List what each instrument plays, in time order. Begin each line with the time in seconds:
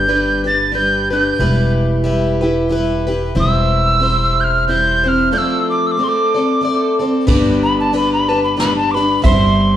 Already playing: upright bass G1, tin whistle G6
0.07 twelve-string acoustic guitar G3 D4 G4 B4
0.44 twelve-string acoustic guitar D4 G4 B4, tin whistle A6
0.72 twelve-string acoustic guitar G3 D4 G4 B4, tin whistle G6
1.10 twelve-string acoustic guitar D4 G4 B4, tin whistle G6
1.39 upright bass E1, twelve-string acoustic guitar E3 G3 E4 G4 B4
2.04 twelve-string acoustic guitar G3 E4 G4 B4
2.41 twelve-string acoustic guitar E4 G4 B4
2.69 twelve-string acoustic guitar G3 E4 G4 B4
3.07 twelve-string acoustic guitar E4 G4 B4
3.35 upright bass E1, twelve-string acoustic guitar E3 G3 C4 E4 C5
3.40 tin whistle E6
4.00 twelve-string acoustic guitar G3 C4 E4 C5
4.41 tin whistle F6 G6
4.68 twelve-string acoustic guitar G3 C4 E4 C5, tin whistle G6
5.04 twelve-string acoustic guitar C4 E4 C5, tin whistle G6
5.08 tin whistle F6
5.31 twelve-string acoustic guitar F3 A3 C4 A4 D5, tin whistle G6
5.38 tin whistle E6
5.70 tin whistle D6
5.87 tin whistle E6
5.91 tin whistle D6
5.98 twelve-string acoustic guitar A3 C4 A4 D5
6.04 tin whistle C6
6.08 tin whistle D6
6.35 twelve-string acoustic guitar C4 A4 D5
6.61 twelve-string acoustic guitar A3 C4 A4 D5
6.99 twelve-string acoustic guitar C4 A4 D5
7.27 upright bass G1, twelve-string acoustic guitar G3 B3 D4 G4 B4, resonator guitar played with a steel bar D5, kick, crash
7.63 tin whistle B5
7.80 tin whistle A5
7.92 twelve-string acoustic guitar B3 D4 G4 B4, ride
7.97 tin whistle B5
8.13 tin whistle B5
8.29 twelve-string acoustic guitar D4 G4 B4, tin whistle A5
8.44 tin whistle B5
8.57 twelve-string acoustic guitar B3 D4 G4 B4, tin whistle B5, snare, ride
8.76 tin whistle A5
8.91 twelve-string acoustic guitar B4, tin whistle B5 D6
8.96 twelve-string acoustic guitar D4 G4, ride
9.22 upright bass G1, twelve-string acoustic guitar G3 C4 E4 C5, resonator guitar played with a steel bar E5, tin whistle C6, kick, ride